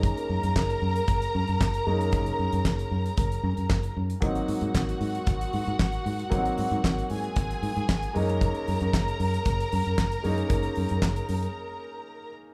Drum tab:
HH |xx-x-x-xxx-x-x-x|xx-x-x-xxx-x-x-x|xxox-xoxxxox-xox|xxox-xoxxxox-xox|
CP |----x-------x---|----x-------x---|----x-------x---|----x-------x---|
SD |----o-------o---|----o-------o---|----o-------o---|----o-------o---|
BD |o---o---o---o---|o---o---o---o---|o---o---o---o---|o---o---o---o---|

HH |xxox-xoxxxox-xox|xxox-xox--------|
CP |----x-------x---|----x-----------|
SD |----o-------o---|----o-----------|
BD |o---o---o---o---|o---o-----------|